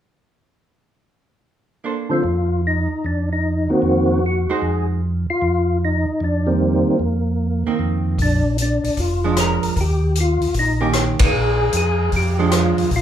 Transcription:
1.84 2.95 A#3 soft
1.84 2.95 D4 soft
1.84 2.96 A4 soft
1.84 2.96 C5 soft
2.09 2.22 D3 soft
2.09 2.22 F3 soft
2.09 2.23 A3 soft
2.09 2.23 C4 medium
2.09 2.61 F4 medium
2.24 2.88 F2 medium
2.67 3.06 D#4 medium
3.04 3.69 F2 medium
3.04 3.29 D4 medium
3.33 3.72 D#4 medium
3.69 4.20 D#3 medium
3.69 4.20 A#3 soft
3.69 4.20 C4 medium
3.69 3.72 F#4 medium
3.69 4.25 F#4 medium
3.82 4.47 F2 medium
4.26 4.51 F#4 medium
4.49 4.99 G#3 soft
4.49 4.99 D#4 medium
4.49 5.00 F#4 medium
4.49 4.87 G#4 medium
4.49 5.00 C5 medium
4.62 5.26 F2 medium
5.30 5.78 F4 medium
5.42 6.06 F2 medium
5.85 6.23 D#4 medium
6.20 6.85 F2 medium
6.20 6.49 D4 medium
6.46 6.97 D#3 medium
6.46 6.97 G3 medium
6.46 6.49 A#3 medium
6.46 7.76 A#3 medium
6.46 6.97 C4 medium
6.99 7.64 F2 medium
7.67 8.16 D#3 soft
7.67 8.16 A#3 medium
7.67 8.17 C4 medium
7.79 8.43 F2 medium
8.18 8.80 A#1 medium
8.18 8.57 D4 medium
8.18 kick soft
8.18 open hi-hat soft
8.58 closed hi-hat soft
8.62 9.00 D4 medium
8.84 8.91 A#1 soft
8.84 open hi-hat soft
8.97 9.59 F1 medium
8.97 9.39 F4 medium
8.97 kick soft
8.97 open hi-hat soft
9.24 9.74 F3 medium
9.24 9.74 G#3 medium
9.24 9.74 D4 medium
9.37 9.79 A#4 medium
9.37 cross-stick medium
9.37 closed hi-hat medium
9.63 9.70 F1 soft
9.63 open hi-hat soft
9.76 10.38 D#2 medium
9.76 kick soft
9.76 open hi-hat soft
9.81 10.19 G4 medium
10.15 closed hi-hat soft
10.20 10.55 F4 medium
10.41 10.48 D#2 soft
10.41 open hi-hat soft
10.54 11.16 A#1 medium
10.54 kick soft
10.54 open hi-hat soft
10.59 10.94 D#4 medium
10.81 11.31 D#3 soft
10.81 11.31 A#3 medium
10.81 11.31 C#4 medium
10.81 11.31 G4 medium
10.93 cross-stick medium
10.93 closed hi-hat medium
11.19 11.27 A#1 soft
11.19 kick medium
11.19 ride medium
11.26 11.76 G#4 loud
11.33 11.70 A#1 medium
11.73 12.10 F2 medium
11.73 closed hi-hat soft
11.77 12.12 G#4 medium
12.12 12.74 F2 medium
12.12 kick soft
12.12 open hi-hat soft
12.16 12.55 G4 medium
12.39 12.89 F3 medium
12.39 12.89 G#3 medium
12.39 12.89 D4 medium
12.51 cross-stick medium
12.51 closed hi-hat medium
12.56 12.90 F4 medium
12.78 12.85 F2 soft
12.78 open hi-hat soft
12.91 13.02 A#1 medium
12.91 kick soft
12.91 open hi-hat soft
12.96 13.02 F4 medium

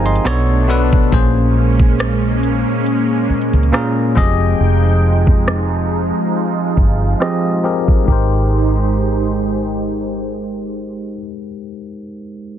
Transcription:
0.00 0.18 G1 medium
0.00 0.23 F3 medium
0.00 0.23 G#3 medium
0.00 0.23 D#4 medium
0.00 0.27 G4 soft
0.00 0.27 G#4 medium
0.00 0.27 A#4 medium
0.00 0.27 C5 medium
0.00 0.06 D#5 medium
0.00 0.27 F5 medium
0.00 0.23 G5 medium
0.00 0.27 G5 medium
0.00 0.27 G#5 medium
0.00 0.27 A#5 medium
0.06 0.47 D#5 soft
0.06 0.47 C6 medium
0.06 closed hi-hat medium
0.15 closed hi-hat medium
0.25 0.97 B1 medium
0.25 0.53 B2 medium
0.25 1.11 A3 medium
0.25 1.11 B3 medium
0.25 0.53 B3 medium
0.25 1.11 D4 medium
0.25 0.53 D4 medium
0.25 0.53 A4 medium
0.25 0.54 C#5 loud
0.25 cross-stick loud
0.25 closed hi-hat medium
0.68 0.96 B2 medium
0.68 0.96 B3 medium
0.68 0.96 D4 medium
0.68 0.97 A4 medium
0.68 0.97 B4 medium
0.68 closed hi-hat medium
0.93 kick medium
1.12 2.62 A#1 loud
1.12 2.18 A#2 medium
1.12 4.14 G#3 medium
1.12 2.18 A#3 medium
1.12 4.13 A#3 medium
1.12 4.14 C#4 medium
1.12 2.18 C#4 medium
1.12 2.19 G#4 medium
1.12 2.19 C5 medium
1.12 kick loud
1.12 closed hi-hat medium
1.79 kick medium
1.99 cross-stick loud
1.99 closed hi-hat medium
2.43 closed hi-hat medium
2.86 closed hi-hat medium
3.30 muted fingered electric bass stroke soft
3.30 closed hi-hat soft
3.41 closed hi-hat soft
3.53 3.70 C#2 medium
3.53 closed hi-hat medium
3.63 closed hi-hat medium
3.72 4.00 A#2 medium
3.72 4.01 A#3 medium
3.72 4.01 C#4 medium
3.72 4.01 G#4 medium
3.72 4.01 A#4 medium
3.72 cross-stick loud
3.72 closed hi-hat medium
4.15 4.53 F1 medium
4.15 5.56 F3 medium
4.15 8.04 F3 medium
4.15 8.04 G#3 medium
4.15 5.56 C4 medium
4.15 8.04 D#4 medium
4.15 5.56 G4 medium
4.15 5.57 G#4 medium
4.15 5.57 D#5 loud
4.15 5.89 G5 medium
4.15 kick medium
4.15 closed hi-hat medium
4.60 6.10 F1 loud
5.27 kick medium
5.48 cross-stick loud
5.91 8.06 F4 medium
6.77 7.13 G1 medium
6.77 kick medium
7.20 7.48 F3 medium
7.20 7.48 C4 medium
7.20 7.49 G4 medium
7.20 7.49 G#4 medium
7.20 7.49 D#5 medium
7.20 cross-stick loud
7.63 7.92 F3 medium
7.63 7.92 C4 medium
7.63 7.92 G4 medium
7.63 7.92 G#4 medium
7.63 7.93 A#4 medium
7.88 kick medium
8.03 11.14 G#3 medium
8.03 11.16 D#4 medium
8.08 11.18 G#1 medium
8.08 11.18 G#3 medium
8.08 11.18 D#4 medium
8.08 11.18 G4 medium
8.08 11.21 A#4 medium
8.08 11.18 C5 medium
8.08 kick loud
8.08 crash medium
8.12 11.23 C5 medium

